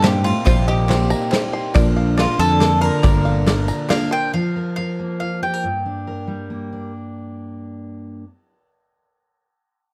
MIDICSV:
0, 0, Header, 1, 9, 480
1, 0, Start_track
1, 0, Key_signature, -2, "minor"
1, 0, Tempo, 431655
1, 518, Time_signature, 3, 2, 24, 8
1, 11047, End_track
2, 0, Start_track
2, 0, Title_t, "Five-string banjo"
2, 0, Program_c, 0, 105
2, 0, Note_on_c, 0, 75, 74
2, 0, Note_on_c, 0, 82, 100
2, 36, Note_on_c, 0, 72, 76
2, 277, Note_off_c, 0, 82, 0
2, 278, Note_off_c, 0, 75, 0
2, 281, Note_on_c, 0, 84, 77
2, 499, Note_off_c, 0, 72, 0
2, 513, Note_on_c, 0, 72, 93
2, 752, Note_on_c, 0, 75, 75
2, 977, Note_off_c, 0, 72, 0
2, 990, Note_on_c, 0, 72, 71
2, 1222, Note_off_c, 0, 84, 0
2, 1227, Note_on_c, 0, 82, 103
2, 1451, Note_off_c, 0, 72, 0
2, 1465, Note_on_c, 0, 72, 73
2, 1701, Note_off_c, 0, 82, 0
2, 1706, Note_on_c, 0, 84, 82
2, 1709, Note_off_c, 0, 75, 0
2, 1942, Note_on_c, 0, 74, 97
2, 1946, Note_off_c, 0, 72, 0
2, 1947, Note_off_c, 0, 84, 0
2, 2185, Note_on_c, 0, 77, 78
2, 2405, Note_off_c, 0, 74, 0
2, 2418, Note_on_c, 0, 74, 74
2, 2878, Note_off_c, 0, 74, 0
2, 2891, Note_on_c, 0, 74, 76
2, 3125, Note_on_c, 0, 84, 78
2, 3143, Note_off_c, 0, 77, 0
2, 3359, Note_off_c, 0, 74, 0
2, 3372, Note_on_c, 0, 74, 88
2, 3614, Note_on_c, 0, 77, 73
2, 3848, Note_off_c, 0, 74, 0
2, 3861, Note_on_c, 0, 74, 70
2, 4090, Note_off_c, 0, 84, 0
2, 4094, Note_on_c, 0, 82, 90
2, 4322, Note_off_c, 0, 74, 0
2, 4335, Note_on_c, 0, 74, 70
2, 4567, Note_off_c, 0, 82, 0
2, 4572, Note_on_c, 0, 84, 77
2, 4576, Note_off_c, 0, 77, 0
2, 4816, Note_off_c, 0, 84, 0
2, 4817, Note_off_c, 0, 74, 0
2, 11047, End_track
3, 0, Start_track
3, 0, Title_t, "Mandolin"
3, 0, Program_c, 1, 25
3, 40, Note_on_c, 1, 67, 108
3, 263, Note_off_c, 1, 67, 0
3, 271, Note_on_c, 1, 65, 96
3, 494, Note_off_c, 1, 65, 0
3, 507, Note_on_c, 1, 65, 91
3, 734, Note_off_c, 1, 65, 0
3, 757, Note_on_c, 1, 67, 95
3, 1667, Note_off_c, 1, 67, 0
3, 2445, Note_on_c, 1, 65, 95
3, 2663, Note_on_c, 1, 69, 113
3, 2682, Note_off_c, 1, 65, 0
3, 3126, Note_off_c, 1, 69, 0
3, 3130, Note_on_c, 1, 70, 100
3, 4289, Note_off_c, 1, 70, 0
3, 4337, Note_on_c, 1, 77, 105
3, 4582, Note_off_c, 1, 77, 0
3, 4586, Note_on_c, 1, 79, 96
3, 4817, Note_off_c, 1, 79, 0
3, 4821, Note_on_c, 1, 77, 77
3, 5280, Note_off_c, 1, 77, 0
3, 5294, Note_on_c, 1, 77, 80
3, 5769, Note_off_c, 1, 77, 0
3, 5782, Note_on_c, 1, 77, 76
3, 6029, Note_off_c, 1, 77, 0
3, 6036, Note_on_c, 1, 79, 70
3, 7428, Note_off_c, 1, 79, 0
3, 11047, End_track
4, 0, Start_track
4, 0, Title_t, "Steel-string acoustic guitar"
4, 0, Program_c, 2, 25
4, 4823, Note_on_c, 2, 53, 66
4, 5071, Note_on_c, 2, 70, 58
4, 5310, Note_off_c, 2, 70, 0
4, 5315, Note_on_c, 2, 70, 55
4, 5554, Note_on_c, 2, 58, 53
4, 5795, Note_on_c, 2, 65, 50
4, 6027, Note_off_c, 2, 70, 0
4, 6031, Note_on_c, 2, 67, 54
4, 6155, Note_off_c, 2, 67, 0
4, 6155, Note_on_c, 2, 70, 46
4, 6240, Note_off_c, 2, 65, 0
4, 6262, Note_off_c, 2, 53, 0
4, 6267, Note_on_c, 2, 43, 60
4, 6268, Note_off_c, 2, 70, 0
4, 6512, Note_on_c, 2, 62, 48
4, 6753, Note_on_c, 2, 70, 52
4, 6977, Note_on_c, 2, 55, 49
4, 7216, Note_off_c, 2, 58, 0
4, 7229, Note_on_c, 2, 58, 41
4, 7465, Note_off_c, 2, 62, 0
4, 7479, Note_on_c, 2, 62, 43
4, 7674, Note_off_c, 2, 55, 0
4, 7682, Note_off_c, 2, 70, 0
4, 9155, Note_off_c, 2, 43, 0
4, 9155, Note_off_c, 2, 58, 0
4, 9159, Note_off_c, 2, 62, 0
4, 11047, End_track
5, 0, Start_track
5, 0, Title_t, "Steel-string acoustic guitar"
5, 0, Program_c, 3, 25
5, 25, Note_on_c, 3, 55, 71
5, 28, Note_on_c, 3, 58, 70
5, 37, Note_on_c, 3, 63, 76
5, 44, Note_on_c, 3, 67, 72
5, 490, Note_off_c, 3, 55, 0
5, 498, Note_off_c, 3, 63, 0
5, 501, Note_off_c, 3, 67, 0
5, 503, Note_off_c, 3, 58, 0
5, 503, Note_on_c, 3, 48, 86
5, 503, Note_on_c, 3, 55, 80
5, 507, Note_on_c, 3, 58, 81
5, 511, Note_on_c, 3, 63, 84
5, 515, Note_on_c, 3, 67, 84
5, 981, Note_off_c, 3, 55, 0
5, 988, Note_off_c, 3, 48, 0
5, 992, Note_off_c, 3, 63, 0
5, 994, Note_off_c, 3, 67, 0
5, 995, Note_on_c, 3, 55, 57
5, 1000, Note_off_c, 3, 58, 0
5, 1005, Note_on_c, 3, 58, 63
5, 1008, Note_on_c, 3, 63, 63
5, 1015, Note_on_c, 3, 67, 70
5, 1215, Note_off_c, 3, 67, 0
5, 1228, Note_on_c, 3, 67, 54
5, 1232, Note_off_c, 3, 63, 0
5, 1234, Note_off_c, 3, 55, 0
5, 1239, Note_off_c, 3, 58, 0
5, 1246, Note_on_c, 3, 63, 54
5, 1256, Note_on_c, 3, 58, 47
5, 1464, Note_off_c, 3, 58, 0
5, 1470, Note_off_c, 3, 67, 0
5, 1472, Note_off_c, 3, 63, 0
5, 1474, Note_on_c, 3, 55, 84
5, 1478, Note_on_c, 3, 58, 79
5, 1485, Note_on_c, 3, 63, 85
5, 1490, Note_on_c, 3, 67, 85
5, 1943, Note_off_c, 3, 55, 0
5, 1944, Note_on_c, 3, 46, 89
5, 1947, Note_on_c, 3, 53, 106
5, 1952, Note_on_c, 3, 50, 97
5, 1953, Note_off_c, 3, 58, 0
5, 1954, Note_off_c, 3, 67, 0
5, 1956, Note_off_c, 3, 63, 0
5, 1957, Note_on_c, 3, 58, 110
5, 1959, Note_on_c, 3, 70, 102
5, 1961, Note_on_c, 3, 62, 105
5, 2408, Note_off_c, 3, 62, 0
5, 2410, Note_off_c, 3, 53, 0
5, 2414, Note_on_c, 3, 53, 60
5, 2415, Note_off_c, 3, 58, 0
5, 2419, Note_on_c, 3, 58, 62
5, 2421, Note_on_c, 3, 62, 65
5, 2424, Note_off_c, 3, 46, 0
5, 2426, Note_off_c, 3, 70, 0
5, 2429, Note_off_c, 3, 50, 0
5, 2430, Note_on_c, 3, 70, 68
5, 2887, Note_off_c, 3, 53, 0
5, 2892, Note_on_c, 3, 53, 69
5, 2894, Note_off_c, 3, 62, 0
5, 2897, Note_off_c, 3, 58, 0
5, 2901, Note_on_c, 3, 58, 73
5, 2908, Note_on_c, 3, 62, 79
5, 2909, Note_off_c, 3, 70, 0
5, 2913, Note_on_c, 3, 70, 81
5, 3125, Note_off_c, 3, 70, 0
5, 3129, Note_off_c, 3, 62, 0
5, 3137, Note_off_c, 3, 58, 0
5, 3138, Note_off_c, 3, 53, 0
5, 3138, Note_on_c, 3, 70, 51
5, 3142, Note_on_c, 3, 62, 55
5, 3151, Note_on_c, 3, 58, 46
5, 3157, Note_on_c, 3, 53, 42
5, 3359, Note_off_c, 3, 53, 0
5, 3362, Note_off_c, 3, 58, 0
5, 3365, Note_on_c, 3, 46, 83
5, 3365, Note_on_c, 3, 50, 83
5, 3366, Note_off_c, 3, 62, 0
5, 3370, Note_off_c, 3, 70, 0
5, 3372, Note_on_c, 3, 53, 84
5, 3375, Note_on_c, 3, 58, 86
5, 3380, Note_on_c, 3, 62, 87
5, 3383, Note_on_c, 3, 70, 87
5, 3828, Note_off_c, 3, 53, 0
5, 3838, Note_off_c, 3, 58, 0
5, 3842, Note_on_c, 3, 53, 61
5, 3844, Note_off_c, 3, 62, 0
5, 3852, Note_off_c, 3, 50, 0
5, 3852, Note_on_c, 3, 58, 66
5, 3853, Note_off_c, 3, 46, 0
5, 3854, Note_off_c, 3, 70, 0
5, 3858, Note_on_c, 3, 62, 77
5, 3867, Note_on_c, 3, 70, 80
5, 4307, Note_off_c, 3, 53, 0
5, 4316, Note_off_c, 3, 58, 0
5, 4320, Note_off_c, 3, 62, 0
5, 4321, Note_on_c, 3, 53, 74
5, 4329, Note_off_c, 3, 70, 0
5, 4329, Note_on_c, 3, 58, 82
5, 4334, Note_on_c, 3, 62, 80
5, 4342, Note_on_c, 3, 70, 80
5, 4558, Note_off_c, 3, 70, 0
5, 4569, Note_off_c, 3, 62, 0
5, 4570, Note_off_c, 3, 53, 0
5, 4571, Note_off_c, 3, 58, 0
5, 4571, Note_on_c, 3, 70, 58
5, 4582, Note_on_c, 3, 62, 53
5, 4584, Note_on_c, 3, 58, 51
5, 4592, Note_on_c, 3, 53, 46
5, 4815, Note_off_c, 3, 70, 0
5, 4821, Note_off_c, 3, 62, 0
5, 4822, Note_off_c, 3, 58, 0
5, 4826, Note_off_c, 3, 53, 0
5, 11047, End_track
6, 0, Start_track
6, 0, Title_t, "Upright piano"
6, 0, Program_c, 4, 0
6, 0, Control_c, 4, 64, 127
6, 0, Note_on_c, 4, 36, 72
6, 0, Note_on_c, 4, 48, 71
6, 0, Note_on_c, 4, 55, 77
6, 0, Note_on_c, 4, 60, 72
6, 0, Note_on_c, 4, 63, 68
6, 0, Note_on_c, 4, 70, 75
6, 0, Note_on_c, 4, 75, 87
6, 475, Note_off_c, 4, 48, 0
6, 476, Note_off_c, 4, 36, 0
6, 522, Note_on_c, 4, 36, 65
6, 523, Note_on_c, 4, 48, 64
6, 1901, Note_off_c, 4, 55, 0
6, 1903, Note_off_c, 4, 60, 0
6, 1908, Note_off_c, 4, 36, 0
6, 1908, Note_off_c, 4, 48, 0
6, 1910, Note_off_c, 4, 63, 0
6, 1916, Note_off_c, 4, 70, 0
6, 1919, Note_off_c, 4, 75, 0
6, 1931, Note_on_c, 4, 53, 84
6, 1941, Note_on_c, 4, 58, 77
6, 1951, Note_on_c, 4, 62, 77
6, 1952, Note_on_c, 4, 46, 83
6, 1953, Note_on_c, 4, 34, 79
6, 1962, Note_on_c, 4, 65, 75
6, 1966, Control_c, 4, 64, 0
6, 1968, Note_on_c, 4, 74, 86
6, 2190, Control_c, 4, 64, 127
6, 3340, Note_off_c, 4, 34, 0
6, 3340, Note_off_c, 4, 46, 0
6, 3390, Note_on_c, 4, 46, 64
6, 3391, Note_on_c, 4, 34, 66
6, 4766, Note_off_c, 4, 53, 0
6, 4770, Note_off_c, 4, 58, 0
6, 4776, Note_off_c, 4, 62, 0
6, 4778, Note_off_c, 4, 46, 0
6, 4779, Note_off_c, 4, 34, 0
6, 4781, Note_off_c, 4, 65, 0
6, 4784, Note_off_c, 4, 74, 0
6, 4835, Control_c, 4, 64, 0
6, 11047, End_track
7, 0, Start_track
7, 0, Title_t, "Cello"
7, 0, Program_c, 5, 42
7, 22, Note_on_c, 5, 46, 94
7, 253, Note_off_c, 5, 46, 0
7, 259, Note_on_c, 5, 45, 90
7, 485, Note_off_c, 5, 45, 0
7, 492, Note_on_c, 5, 46, 89
7, 722, Note_off_c, 5, 46, 0
7, 728, Note_on_c, 5, 46, 85
7, 1653, Note_off_c, 5, 46, 0
7, 2444, Note_on_c, 5, 46, 82
7, 2659, Note_off_c, 5, 46, 0
7, 2668, Note_on_c, 5, 50, 96
7, 3112, Note_off_c, 5, 50, 0
7, 3139, Note_on_c, 5, 50, 101
7, 4293, Note_off_c, 5, 50, 0
7, 11047, End_track
8, 0, Start_track
8, 0, Title_t, "Fingered electric bass"
8, 0, Program_c, 6, 33
8, 0, Note_on_c, 6, 43, 93
8, 349, Note_off_c, 6, 43, 0
8, 528, Note_on_c, 6, 34, 110
8, 1255, Note_off_c, 6, 34, 0
8, 1959, Note_on_c, 6, 34, 116
8, 2504, Note_off_c, 6, 34, 0
8, 2657, Note_on_c, 6, 41, 99
8, 3210, Note_off_c, 6, 41, 0
8, 3381, Note_on_c, 6, 31, 107
8, 4115, Note_off_c, 6, 31, 0
8, 11047, End_track
9, 0, Start_track
9, 0, Title_t, "Drums"
9, 37, Note_on_c, 9, 39, 100
9, 44, Note_on_c, 9, 38, 91
9, 44, Note_on_c, 9, 51, 61
9, 148, Note_off_c, 9, 39, 0
9, 156, Note_off_c, 9, 38, 0
9, 156, Note_off_c, 9, 51, 0
9, 278, Note_on_c, 9, 39, 33
9, 287, Note_on_c, 9, 51, 63
9, 390, Note_off_c, 9, 39, 0
9, 398, Note_off_c, 9, 51, 0
9, 506, Note_on_c, 9, 39, 88
9, 519, Note_on_c, 9, 54, 93
9, 522, Note_on_c, 9, 36, 116
9, 522, Note_on_c, 9, 51, 68
9, 618, Note_off_c, 9, 39, 0
9, 630, Note_off_c, 9, 54, 0
9, 633, Note_off_c, 9, 36, 0
9, 634, Note_off_c, 9, 51, 0
9, 991, Note_on_c, 9, 39, 95
9, 1005, Note_on_c, 9, 38, 99
9, 1005, Note_on_c, 9, 51, 71
9, 1103, Note_off_c, 9, 39, 0
9, 1117, Note_off_c, 9, 38, 0
9, 1117, Note_off_c, 9, 51, 0
9, 1227, Note_on_c, 9, 54, 93
9, 1338, Note_off_c, 9, 54, 0
9, 1348, Note_on_c, 9, 39, 31
9, 1357, Note_on_c, 9, 54, 27
9, 1459, Note_off_c, 9, 39, 0
9, 1464, Note_on_c, 9, 39, 96
9, 1468, Note_off_c, 9, 54, 0
9, 1479, Note_on_c, 9, 38, 89
9, 1479, Note_on_c, 9, 51, 68
9, 1575, Note_off_c, 9, 39, 0
9, 1591, Note_off_c, 9, 38, 0
9, 1591, Note_off_c, 9, 51, 0
9, 1711, Note_on_c, 9, 39, 30
9, 1822, Note_off_c, 9, 39, 0
9, 1948, Note_on_c, 9, 39, 98
9, 1950, Note_on_c, 9, 54, 93
9, 1952, Note_on_c, 9, 51, 70
9, 1953, Note_on_c, 9, 36, 123
9, 2059, Note_off_c, 9, 39, 0
9, 2061, Note_off_c, 9, 54, 0
9, 2063, Note_off_c, 9, 51, 0
9, 2064, Note_off_c, 9, 36, 0
9, 2428, Note_on_c, 9, 39, 95
9, 2435, Note_on_c, 9, 38, 92
9, 2435, Note_on_c, 9, 51, 73
9, 2539, Note_off_c, 9, 39, 0
9, 2546, Note_off_c, 9, 38, 0
9, 2546, Note_off_c, 9, 51, 0
9, 2663, Note_on_c, 9, 54, 102
9, 2774, Note_off_c, 9, 54, 0
9, 2785, Note_on_c, 9, 39, 30
9, 2787, Note_on_c, 9, 54, 31
9, 2897, Note_off_c, 9, 39, 0
9, 2899, Note_off_c, 9, 54, 0
9, 2904, Note_on_c, 9, 39, 95
9, 2906, Note_on_c, 9, 38, 91
9, 2906, Note_on_c, 9, 51, 63
9, 3016, Note_off_c, 9, 39, 0
9, 3017, Note_off_c, 9, 38, 0
9, 3017, Note_off_c, 9, 51, 0
9, 3145, Note_on_c, 9, 39, 31
9, 3146, Note_on_c, 9, 51, 62
9, 3256, Note_off_c, 9, 39, 0
9, 3258, Note_off_c, 9, 51, 0
9, 3376, Note_on_c, 9, 54, 104
9, 3381, Note_on_c, 9, 39, 92
9, 3383, Note_on_c, 9, 36, 120
9, 3384, Note_on_c, 9, 51, 65
9, 3487, Note_off_c, 9, 54, 0
9, 3492, Note_off_c, 9, 39, 0
9, 3494, Note_off_c, 9, 36, 0
9, 3495, Note_off_c, 9, 51, 0
9, 3507, Note_on_c, 9, 39, 33
9, 3618, Note_on_c, 9, 54, 31
9, 3619, Note_off_c, 9, 39, 0
9, 3729, Note_off_c, 9, 54, 0
9, 3862, Note_on_c, 9, 38, 96
9, 3862, Note_on_c, 9, 51, 65
9, 3863, Note_on_c, 9, 39, 101
9, 3973, Note_off_c, 9, 38, 0
9, 3973, Note_off_c, 9, 51, 0
9, 3974, Note_off_c, 9, 39, 0
9, 4093, Note_on_c, 9, 54, 102
9, 4204, Note_off_c, 9, 54, 0
9, 4332, Note_on_c, 9, 39, 97
9, 4336, Note_on_c, 9, 54, 33
9, 4339, Note_on_c, 9, 38, 90
9, 4339, Note_on_c, 9, 51, 61
9, 4443, Note_off_c, 9, 39, 0
9, 4446, Note_off_c, 9, 54, 0
9, 4446, Note_on_c, 9, 54, 33
9, 4450, Note_off_c, 9, 38, 0
9, 4450, Note_off_c, 9, 51, 0
9, 4557, Note_off_c, 9, 54, 0
9, 11047, End_track
0, 0, End_of_file